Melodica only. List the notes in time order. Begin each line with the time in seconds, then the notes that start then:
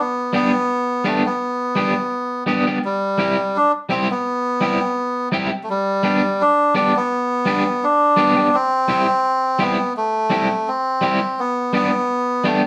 0.00 B3
0.35 B3
1.06 A3
1.26 B3
2.85 G3
3.56 D4
3.91 C4
4.11 B3
5.64 A3
5.70 G3
6.41 D4
6.76 D4
6.96 B3
7.84 D4
8.54 C4
9.61 B3
9.97 A3
10.68 C4
11.39 B3
11.75 B3
12.46 A3